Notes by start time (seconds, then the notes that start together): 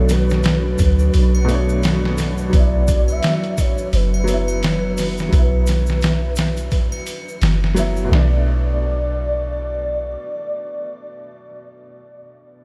Already playing: B1 B2 F#3 A3 D4 F#4 A4 B4 C#5
0.09 B4, snare, open hi-hat, shaker
0.30 snare, shaker
0.43 snare, open hi-hat, shaker
0.78 D2, kick, open hi-hat, shaker
0.99 shaker
1.13 B1, open hi-hat, shaker
1.35 triangle
1.45 B2 A3, shaker
1.49 D4, open hi-hat
1.54 C#5
1.69 shaker
1.83 snare, open hi-hat, shaker
2.05 snare
2.18 snare, open hi-hat, shaker
2.38 shaker
2.50 B1 F#3, kick, open hi-hat, shaker
2.54 B3 D5
2.59 E4
2.87 kick, open hi-hat, shaker
3.08 E5, triangle, shaker
3.23 snare, open hi-hat, shaker
3.44 closed hi-hat
3.58 C#5, kick, open hi-hat, shaker
3.78 shaker
3.93 F#1 B4, open hi-hat, shaker
4.14 triangle
4.24 F#3, open hi-hat, shaker
4.29 B3
4.33 E4
4.48 triangle, shaker
4.63 snare, open hi-hat, shaker
4.97 snare, open hi-hat, shaker
5.18 snare, shaker
5.29 B1 F#3, kick, open hi-hat
5.33 B3, shaker
5.38 E4
5.67 snare, open hi-hat, shaker
5.87 snare, shaker
6.01 snare, open hi-hat, shaker
6.36 snare, open hi-hat, shaker
6.57 closed hi-hat, shaker
6.71 kick, open hi-hat, shaker
6.92 triangle
7.06 open hi-hat, shaker
7.28 shaker
7.42 F#1, snare, open hi-hat, shaker
7.64 snare
7.74 F#3 B3, snare, open hi-hat, shaker
7.79 E4
7.97 shaker
8.05 B2
8.09 B1 A3
8.13 D4 D5, snare
8.19 D5